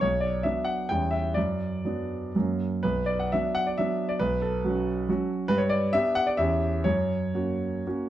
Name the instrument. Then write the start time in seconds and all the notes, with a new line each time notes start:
grand piano
0.01 B1 C#5
0.20 D5
0.43 F#3 B3 D4 E5
0.65 F#5
0.89 E2 G3 C#4 E4 G5
1.11 E5
1.34 F#2 D5
1.85 F#3 B3 D4
2.35 F#2 F#3 A#3 C#4
2.83 B1 B4
3.06 D5
3.19 F#5
3.32 F#3 B3 D4 E5
3.55 F#5
3.67 D5
3.78 F#3 B3 D4 E5
4.09 D5
4.19 B1 B4
4.42 A4
4.64 F#3 C#4 F#4
5.09 F#3 C#4 F#4
5.48 G2 B4
5.58 C#5
5.69 D5
5.93 B3 D4 G4 E5
6.15 F#5
6.27 D5
6.37 E2 C#4 G4 E5
6.84 F#2 C#5
7.34 A#3 C#4 F#4
7.87 A#3 C#4 F#4